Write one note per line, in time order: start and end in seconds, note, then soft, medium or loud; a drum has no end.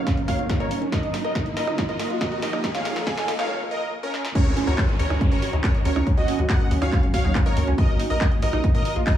0.00 0.89 C#3 medium
0.00 0.89 F#3 medium
0.00 0.89 A#3 medium
0.00 0.89 D#4 medium
0.00 3.45 A#4 medium
0.00 0.18 C#5 medium
0.00 0.18 F5 loud
0.00 riser medium
0.07 0.16 C#4 loud
0.07 kick loud
0.07 snare medium
0.07 closed hi-hat loud
0.17 0.25 C#4 medium
0.17 closed hi-hat soft
0.28 0.35 F#4 medium
0.28 0.50 C#5 medium
0.28 0.50 F5 medium
0.28 kick medium
0.28 open hi-hat loud
0.39 0.46 D#4 medium
0.49 0.54 A#4 medium
0.49 kick loud
0.49 snare medium
0.49 closed hi-hat medium
0.60 0.82 A#4 medium
0.60 0.82 C#5 loud
0.60 0.68 D#5 medium
0.60 closed hi-hat soft
0.71 0.78 C#4 medium
0.71 open hi-hat loud
0.82 0.92 C#4 loud
0.82 closed hi-hat soft
0.92 3.47 D#3 medium
0.92 3.47 F3 medium
0.92 3.47 A#3 medium
0.92 1.02 D#4 loud
0.92 3.47 F4 medium
0.92 1.14 A#4 medium
0.92 1.14 D#5 loud
0.92 kick loud
0.92 snare medium
0.92 closed hi-hat medium
1.03 1.10 D#4 medium
1.03 closed hi-hat soft
1.14 1.24 D#4 loud
1.14 snare medium
1.14 open hi-hat loud
1.24 1.32 A#4 medium
1.24 1.46 A#4 medium
1.24 1.46 D#5 medium
1.35 1.40 D#5 medium
1.35 kick loud
1.35 snare medium
1.35 closed hi-hat medium
1.46 1.53 D#5 medium
1.46 closed hi-hat soft
1.57 1.64 D#4 medium
1.57 1.79 A#4 medium
1.57 1.79 D#5 loud
1.57 snare medium
1.57 open hi-hat loud
1.67 1.77 D#4 loud
1.67 closed hi-hat soft
1.67 percussion blips medium
1.78 1.88 D#4 loud
1.78 kick loud
1.78 snare medium
1.78 closed hi-hat medium
1.89 1.96 D#4 medium
1.89 2.11 A#4 medium
1.89 2.11 D#5 loud
1.89 2.11 D#5 medium
1.89 closed hi-hat soft
1.99 2.07 A#4 medium
1.99 snare medium
1.99 open hi-hat loud
2.10 2.18 F4 loud
2.10 closed hi-hat soft
2.21 2.36 A#4 medium
2.21 2.25 D#5 medium
2.21 2.36 D#5 medium
2.21 kick loud
2.21 snare medium
2.21 closed hi-hat medium
2.32 2.39 A#5 medium
2.32 closed hi-hat soft
2.42 2.50 D#4 medium
2.42 2.64 A#4 medium
2.42 2.64 D#5 loud
2.42 snare medium
2.42 open hi-hat loud
2.53 2.63 D#4 loud
2.53 closed hi-hat soft
2.53 percussion blips medium
2.64 2.73 D#4 loud
2.64 kick loud
2.64 snare medium
2.64 closed hi-hat medium
2.75 2.82 D#4 medium
2.75 2.97 C#5 medium
2.75 2.97 F5 loud
2.75 2.97 F5 medium
2.75 snare medium
2.75 closed hi-hat soft
2.85 2.95 D#4 loud
2.85 snare medium
2.85 open hi-hat loud
2.96 3.03 A#4 medium
2.96 snare medium
2.96 closed hi-hat soft
3.07 3.11 D#5 medium
3.07 3.29 F5 medium
3.07 3.29 G#5 medium
3.07 kick loud
3.07 snare loud
3.07 closed hi-hat medium
3.17 3.25 D#5 medium
3.17 snare medium
3.17 closed hi-hat soft
3.28 3.35 D#4 medium
3.28 snare medium
3.28 open hi-hat loud
3.39 3.49 D#4 loud
3.39 3.61 C#5 medium
3.39 3.61 F5 loud
3.39 3.50 F5 loud
3.39 snare medium
3.39 closed hi-hat soft
3.39 percussion blips medium
3.71 3.93 A#4 medium
3.71 3.93 D#5 loud
4.03 4.25 C#4 medium
4.03 4.25 A#4 loud
4.14 snare medium
4.25 snare medium
4.35 9.18 D#3 medium
4.35 7.75 F#3 medium
4.35 9.18 A#3 medium
4.35 4.45 C#4 loud
4.35 7.75 C#4 medium
4.35 7.75 F#4 medium
4.35 4.57 A#4 medium
4.35 4.57 C#5 loud
4.35 kick loud
4.35 closed hi-hat medium
4.35 crash loud
4.35 downlifter medium
4.46 4.53 D#2 medium
4.46 4.53 C#4 medium
4.46 closed hi-hat soft
4.57 4.67 C#4 loud
4.57 open hi-hat loud
4.67 4.74 D#2 medium
4.67 4.75 F#4 medium
4.67 4.89 A#4 medium
4.67 4.89 C#5 loud
4.67 4.89 C#5 medium
4.67 closed hi-hat soft
4.78 4.83 A#4 medium
4.78 kick loud
4.78 clap loud
4.78 closed hi-hat medium
4.89 4.96 A#4 medium
4.89 closed hi-hat soft
4.99 5.06 D#2 medium
4.99 5.07 C#4 medium
4.99 5.21 A#4 medium
4.99 5.21 C#5 medium
4.99 5.21 C#5 loud
4.99 open hi-hat loud
5.10 5.17 D#2 medium
5.10 5.20 C#4 loud
5.10 closed hi-hat soft
5.10 percussion blips medium
5.21 5.30 C#4 loud
5.21 kick loud
5.21 closed hi-hat medium
5.32 5.38 D#1 medium
5.32 5.39 C#4 medium
5.32 5.54 A#4 medium
5.32 5.54 C#5 medium
5.32 5.54 C#5 loud
5.32 closed hi-hat soft
5.42 5.50 F#4 medium
5.42 open hi-hat loud
5.53 5.60 D#2 medium
5.53 5.61 D#4 loud
5.53 closed hi-hat soft
5.64 5.68 A#4 medium
5.64 5.78 A#4 medium
5.64 5.78 C#5 medium
5.64 5.78 C#5 loud
5.64 kick loud
5.64 clap loud
5.64 closed hi-hat medium
5.75 5.82 D#5 medium
5.75 closed hi-hat soft
5.85 5.92 D#2 loud
5.85 5.93 C#4 medium
5.85 6.07 A#4 medium
5.85 6.07 C#5 loud
5.85 6.07 C#5 medium
5.85 open hi-hat loud
5.96 6.03 C#2 medium
5.96 6.05 C#4 loud
5.96 closed hi-hat soft
5.96 percussion blips medium
6.07 6.16 C#4 loud
6.07 kick loud
6.07 closed hi-hat medium
6.17 6.24 D#2 medium
6.17 6.25 C#4 medium
6.17 6.39 F#4 medium
6.17 6.39 D#5 loud
6.17 6.39 D#5 medium
6.17 closed hi-hat soft
6.28 6.38 C#4 loud
6.28 open hi-hat loud
6.39 6.45 D#2 medium
6.39 6.46 F#4 medium
6.39 closed hi-hat soft
6.50 6.54 A#4 medium
6.50 6.72 D#5 medium
6.50 6.72 F#5 medium
6.50 6.72 F#5 loud
6.50 kick loud
6.50 clap loud
6.50 closed hi-hat medium
6.60 6.68 A#4 medium
6.60 closed hi-hat soft
6.71 6.78 D#2 medium
6.71 6.78 C#4 medium
6.71 open hi-hat loud
6.82 6.88 D#2 medium
6.82 6.91 C#4 loud
6.82 7.04 C#5 medium
6.82 7.04 F5 loud
6.82 closed hi-hat soft
6.82 percussion blips medium
6.92 7.02 C#4 loud
6.92 kick loud
6.92 clap medium
6.92 closed hi-hat medium
7.03 7.10 D#1 medium
7.03 7.10 C#4 medium
7.03 closed hi-hat soft
7.14 7.21 F#4 medium
7.14 7.36 C#5 medium
7.14 7.36 F5 loud
7.14 7.36 F5 medium
7.14 kick medium
7.14 open hi-hat loud
7.24 7.31 D#2 medium
7.24 7.32 D#4 loud
7.24 closed hi-hat soft
7.35 7.40 A#4 medium
7.35 kick loud
7.35 clap loud
7.35 closed hi-hat medium
7.46 7.68 A#4 medium
7.46 7.68 C#5 loud
7.46 7.53 D#5 medium
7.46 closed hi-hat soft
7.57 7.63 D#2 medium
7.57 7.64 C#4 medium
7.57 open hi-hat loud
7.67 7.74 C#2 medium
7.67 7.78 C#4 loud
7.67 closed hi-hat soft
7.78 9.18 F3 medium
7.78 7.88 D#4 loud
7.78 9.18 F4 medium
7.78 9.18 A#4 medium
7.78 8.00 A#4 medium
7.78 8.00 D#5 loud
7.78 kick loud
7.78 closed hi-hat medium
7.89 7.95 A#1 medium
7.89 7.96 D#4 medium
7.89 closed hi-hat soft
7.99 8.10 D#4 loud
7.99 open hi-hat loud
8.10 8.17 A#1 medium
8.10 8.18 A#4 medium
8.10 8.32 A#4 medium
8.10 8.32 D#5 loud
8.21 8.25 D#5 medium
8.21 kick loud
8.21 clap loud
8.21 closed hi-hat medium
8.32 8.39 D#5 medium
8.32 closed hi-hat soft
8.42 8.49 A#1 medium
8.42 8.50 D#4 medium
8.42 8.64 A#4 medium
8.42 8.64 D#5 loud
8.42 8.64 D#5 medium
8.42 open hi-hat loud
8.53 8.60 A#1 medium
8.53 8.63 D#4 loud
8.53 closed hi-hat soft
8.53 percussion blips medium
8.64 8.73 D#4 loud
8.64 kick loud
8.64 closed hi-hat medium
8.74 8.81 A#2 medium
8.74 8.82 D#4 medium
8.74 8.97 A#4 medium
8.74 8.96 D#5 loud
8.74 8.97 D#5 loud
8.74 closed hi-hat soft
8.85 8.93 A#4 medium
8.85 open hi-hat loud
8.96 9.03 A#1 medium
8.96 9.03 F4 loud
8.96 closed hi-hat soft
9.07 9.18 A#4 medium
9.07 9.18 D#5 medium
9.07 9.11 D#5 medium
9.07 9.18 D#5 medium
9.07 kick loud
9.07 clap loud
9.07 closed hi-hat medium